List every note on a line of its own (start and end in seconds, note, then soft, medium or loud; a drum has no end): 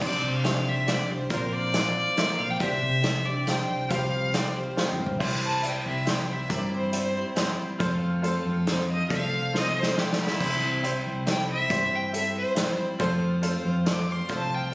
0.00 0.20 C2 medium
0.00 0.43 C4 medium
0.00 0.30 D4 medium
0.00 0.45 D4 medium
0.00 0.30 G4 medium
0.00 0.44 G4 medium
0.00 0.31 C5 medium
0.00 0.46 C5 medium
0.00 0.31 D5 medium
0.00 0.32 D5 loud
0.00 kick loud
0.00 crash loud
0.24 0.96 C3 loud
0.35 0.70 F5 medium
0.43 0.87 C4 medium
0.43 0.74 D4 medium
0.43 0.88 D4 medium
0.43 0.74 G4 medium
0.43 0.88 G4 medium
0.43 0.74 C5 medium
0.43 0.89 C5 medium
0.43 0.74 E5 medium
0.43 snare medium
0.43 closed hi-hat medium
0.68 0.90 E5 loud
0.86 1.09 C4 medium
0.86 1.17 D4 medium
0.86 1.10 D4 medium
0.86 1.17 G4 medium
0.86 1.09 G4 medium
0.86 1.18 C5 medium
0.86 1.07 C5 medium
0.86 1.13 D5 loud
0.86 1.18 F5 medium
0.86 snare loud
0.86 closed hi-hat medium
1.09 1.28 C2 medium
1.09 1.32 D4 soft
1.09 1.32 G4 medium
1.09 1.31 C5 medium
1.09 1.31 C5 loud
1.30 2.03 A#1 loud
1.30 1.74 A#2 medium
1.30 1.75 D3 medium
1.30 1.73 A#3 medium
1.30 1.74 C4 medium
1.30 1.61 F4 medium
1.30 1.75 F4 medium
1.30 1.54 A#4 loud
1.30 1.61 A#4 medium
1.30 1.61 C5 medium
1.30 1.77 C5 medium
1.30 1.62 D5 medium
1.30 kick loud
1.30 closed hi-hat medium
1.52 2.40 D5 loud
1.74 2.16 A#3 medium
1.74 2.18 C4 medium
1.74 2.04 F4 medium
1.74 2.18 F4 medium
1.74 2.04 A#4 medium
1.74 2.04 C5 medium
1.74 2.20 C5 medium
1.74 2.05 D5 medium
1.74 snare medium
1.74 closed hi-hat medium
2.16 2.60 A#3 medium
2.16 2.61 C4 medium
2.16 2.47 F4 medium
2.16 2.62 F4 medium
2.16 2.47 A#4 medium
2.16 2.48 C5 medium
2.16 2.63 C5 medium
2.16 2.48 E5 medium
2.16 snare medium
2.16 closed hi-hat medium
2.39 2.58 A#1 loud
2.39 2.51 F5 loud
2.50 2.60 G5 loud
2.60 2.79 C2 medium
2.60 3.03 C4 medium
2.60 2.90 D4 medium
2.60 3.04 D4 medium
2.60 2.90 G4 medium
2.60 3.06 G4 medium
2.60 2.91 C5 medium
2.60 3.07 C5 medium
2.60 2.91 D5 medium
2.60 3.27 E5 loud
2.60 kick loud
2.60 closed hi-hat medium
2.83 3.55 C3 loud
3.02 3.26 C4 medium
3.02 3.33 D4 medium
3.02 3.26 D4 medium
3.02 3.33 G4 medium
3.02 3.33 C5 medium
3.02 3.33 D5 medium
3.02 snare medium
3.02 closed hi-hat medium
3.06 3.26 G4 medium
3.06 3.24 C5 medium
3.25 3.47 D4 soft
3.25 3.48 G4 soft
3.25 3.47 C5 soft
3.25 3.50 D5 loud
3.46 3.91 C4 medium
3.46 3.76 D4 medium
3.46 3.91 D4 medium
3.46 3.77 G4 medium
3.46 3.92 G4 medium
3.46 3.77 C5 medium
3.46 3.77 F5 medium
3.46 3.91 G5 loud
3.46 snare medium
3.46 closed hi-hat medium
3.51 3.93 C5 medium
3.69 3.87 C2 medium
3.89 4.63 C2 medium
3.89 4.34 C3 medium
3.89 4.34 F3 medium
3.89 4.33 G3 medium
3.89 4.35 C4 medium
3.89 4.19 F4 medium
3.89 4.20 G4 medium
3.89 4.35 G4 medium
3.89 4.20 C5 medium
3.89 4.37 F5 loud
3.89 4.20 F5 medium
3.89 kick loud
3.89 closed hi-hat medium
3.93 4.35 C5 medium
4.33 4.56 G3 medium
4.33 4.57 C4 medium
4.33 4.63 F4 medium
4.33 4.64 G4 medium
4.33 4.56 G4 medium
4.33 4.64 C5 medium
4.33 4.57 D5 medium
4.33 4.64 F5 medium
4.33 snare medium
4.33 closed hi-hat medium
4.37 4.55 C5 medium
4.56 4.76 G3 soft
4.56 4.78 C4 soft
4.56 4.78 G4 medium
4.56 4.99 C5 medium
4.56 4.77 C5 soft
4.76 5.21 G3 medium
4.76 5.21 C4 medium
4.76 5.06 F4 medium
4.76 5.07 G4 medium
4.76 5.22 G4 medium
4.76 5.07 C5 medium
4.76 5.07 F5 medium
4.76 snare medium
4.81 5.22 C5 medium
4.92 mid tom medium
4.99 5.17 G2 medium
5.06 floor tom loud
5.19 5.75 C2 medium
5.19 5.64 C3 medium
5.19 5.64 E3 medium
5.19 5.63 G3 medium
5.19 5.65 C4 medium
5.19 5.49 E4 medium
5.19 5.65 E4 loud
5.19 5.50 G4 medium
5.19 5.50 C5 loud
5.19 kick loud
5.19 crash loud
5.23 5.67 C5 medium
5.45 5.65 A5 loud
5.62 5.86 G3 medium
5.62 5.86 C4 medium
5.62 5.93 E4 medium
5.62 5.85 E4 medium
5.62 5.93 G4 medium
5.62 5.94 D5 medium
5.62 closed hi-hat medium
5.67 5.84 C5 medium
5.67 5.86 G5 medium
5.85 6.40 C2 loud
5.85 6.05 G3 soft
5.85 6.06 C4 soft
5.85 6.07 E4 soft
5.85 6.07 C5 soft
5.85 6.12 E5 loud
6.05 6.28 G3 medium
6.05 6.28 C4 medium
6.05 6.36 E4 medium
6.05 6.27 E4 medium
6.05 6.37 G4 medium
6.05 6.37 C5 medium
6.05 snare medium
6.05 closed hi-hat medium
6.09 6.26 C5 medium
6.09 6.34 G5 medium
6.27 6.49 G3 soft
6.27 6.50 C4 soft
6.27 6.50 E4 soft
6.27 6.50 C5 medium
6.32 6.55 E5 loud
6.48 7.23 G2 loud
6.48 6.94 C3 medium
6.48 6.94 E3 medium
6.48 6.91 G3 medium
6.48 6.93 C4 medium
6.48 6.79 E4 medium
6.48 6.93 E4 medium
6.48 6.80 G4 medium
6.48 6.80 A#4 medium
6.48 6.95 C5 medium
6.48 kick loud
6.48 closed hi-hat medium
6.54 6.73 D5 medium
6.75 6.95 C5 medium
6.92 7.15 G3 medium
6.92 7.15 C4 medium
6.92 7.23 E4 medium
6.92 7.14 E4 medium
6.92 7.23 G4 medium
6.92 7.13 C5 medium
6.92 7.24 D5 medium
6.92 closed hi-hat medium
6.97 7.38 C5 medium
7.14 7.35 G3 soft
7.14 7.36 C4 soft
7.14 7.37 E4 soft
7.14 7.37 C5 soft
7.35 7.80 G3 medium
7.35 7.81 C4 medium
7.35 7.66 E4 medium
7.35 7.81 E4 medium
7.35 7.67 G4 medium
7.35 7.67 C5 medium
7.35 7.82 C5 medium
7.35 snare medium
7.35 closed hi-hat medium
7.79 8.35 F2 medium
7.79 8.24 F3 medium
7.79 8.22 A3 medium
7.79 8.24 C4 medium
7.79 8.09 F4 medium
7.79 8.25 F4 medium
7.79 8.10 A4 medium
7.79 8.25 A4 medium
7.79 8.10 C5 loud
7.79 kick loud
7.79 closed hi-hat medium
8.21 8.46 A3 medium
8.21 8.46 C4 medium
8.21 8.53 F4 medium
8.21 8.53 A4 medium
8.21 8.53 C5 medium
8.21 closed hi-hat medium
8.26 8.46 F4 medium
8.26 8.45 A4 medium
8.45 9.00 F2 medium
8.45 8.67 C4 soft
8.45 8.68 F4 soft
8.45 8.68 A4 medium
8.67 9.10 A3 medium
8.67 9.12 C4 medium
8.67 8.97 F4 medium
8.67 9.12 F4 medium
8.67 8.97 A4 medium
8.67 9.12 A4 medium
8.67 8.98 C5 medium
8.67 8.89 C5 loud
8.67 snare medium
8.67 closed hi-hat medium
8.91 9.11 D#5 loud
9.08 9.84 C2 loud
9.08 9.54 F3 medium
9.08 9.53 A3 medium
9.08 9.39 F4 medium
9.08 9.40 A4 medium
9.08 9.40 D5 medium
9.08 kick loud
9.08 closed hi-hat medium
9.12 9.55 C4 medium
9.12 9.55 F4 medium
9.12 9.55 A4 medium
9.12 9.54 F5 loud
9.53 9.95 A3 medium
9.53 9.97 C4 medium
9.53 9.83 F4 medium
9.53 9.98 F4 medium
9.53 9.84 A4 medium
9.53 9.84 C5 medium
9.53 snare medium
9.57 9.98 A4 medium
9.57 9.81 D#5 loud
9.79 10.00 C5 loud
9.79 snare medium
9.96 10.40 A3 medium
9.96 10.41 C4 medium
9.96 10.27 F4 medium
9.96 10.42 F4 medium
9.96 10.19 G4 loud
9.96 10.27 A4 medium
9.96 10.42 A4 medium
9.96 10.27 C5 medium
9.96 snare medium
10.13 snare loud
10.22 11.04 E4 loud
10.27 snare medium
10.40 10.95 C2 loud
10.40 10.84 C3 medium
10.40 10.84 E3 medium
10.40 10.83 G3 medium
10.40 10.84 C4 medium
10.40 10.70 E4 medium
10.40 10.85 E4 medium
10.40 10.70 G4 medium
10.40 10.70 C5 medium
10.40 10.87 C5 medium
10.40 kick loud
10.40 crash loud
10.82 11.25 G3 medium
10.82 11.27 C4 medium
10.82 11.13 E4 medium
10.82 11.28 E4 medium
10.82 11.13 G4 medium
10.82 11.14 C5 medium
10.82 closed hi-hat medium
10.87 11.29 C5 medium
11.06 11.61 C2 medium
11.26 11.70 G3 medium
11.26 11.72 C4 medium
11.26 11.56 E4 medium
11.26 11.71 E4 medium
11.26 11.57 G4 medium
11.26 11.57 A4 medium
11.26 11.72 C5 medium
11.26 11.49 G5 loud
11.26 snare loud
11.26 closed hi-hat medium
11.51 11.96 E5 loud
11.70 12.43 G2 loud
11.70 12.14 C3 medium
11.70 12.14 E3 medium
11.70 12.12 G3 medium
11.70 12.15 C4 medium
11.70 12.00 E4 medium
11.70 12.14 E4 medium
11.70 12.00 G4 medium
11.70 12.01 C5 medium
11.70 12.16 C5 medium
11.70 kick loud
11.70 closed hi-hat medium
11.95 12.15 G5 loud
12.12 12.56 G3 medium
12.12 12.58 C4 medium
12.12 12.43 E4 medium
12.12 12.58 E4 medium
12.12 12.43 G4 medium
12.12 12.43 A4 medium
12.12 closed hi-hat medium
12.16 12.60 C5 medium
12.16 12.37 E5 loud
12.37 12.57 C5 loud
12.54 13.00 G3 medium
12.54 12.85 E4 medium
12.54 12.86 G4 medium
12.54 12.87 C5 medium
12.54 snare loud
12.54 closed hi-hat medium
12.59 13.00 C4 medium
12.59 13.01 E4 medium
12.59 13.02 C5 medium
12.59 12.80 C5 loud
12.99 13.55 F2 medium
12.99 13.43 F3 medium
12.99 13.42 A3 medium
12.99 13.44 C4 medium
12.99 13.29 F4 medium
12.99 13.44 F4 medium
12.99 13.30 A4 medium
12.99 13.30 C5 loud
12.99 13.46 C5 loud
12.99 kick loud
12.99 closed hi-hat medium
13.42 13.65 A3 medium
13.42 13.66 C4 medium
13.42 13.72 F4 medium
13.42 13.66 F4 medium
13.42 13.73 A4 medium
13.42 13.73 C5 medium
13.42 closed hi-hat medium
13.46 13.64 C5 medium
13.65 14.20 F2 loud
13.65 13.87 C4 medium
13.65 13.88 F4 medium
13.65 13.87 C5 medium
13.85 14.09 A3 medium
13.85 14.09 C4 medium
13.85 14.16 F4 medium
13.85 14.09 F4 medium
13.85 14.16 A4 medium
13.85 14.16 C5 medium
13.85 snare medium
13.85 closed hi-hat medium
13.90 14.08 C5 medium
13.90 14.13 D6 loud
14.09 14.30 C4 soft
14.09 14.31 F4 soft
14.09 14.30 C5 medium
14.09 14.31 C6 loud
14.28 14.74 C2 loud
14.28 14.74 F3 medium
14.28 14.71 A3 medium
14.28 14.73 C4 medium
14.28 14.59 F4 medium
14.28 14.74 F4 medium
14.28 14.59 A4 medium
14.28 14.60 C5 medium
14.28 kick loud
14.28 closed hi-hat medium
14.32 14.74 C5 loud
14.32 14.56 A5 loud
14.54 14.74 G5 loud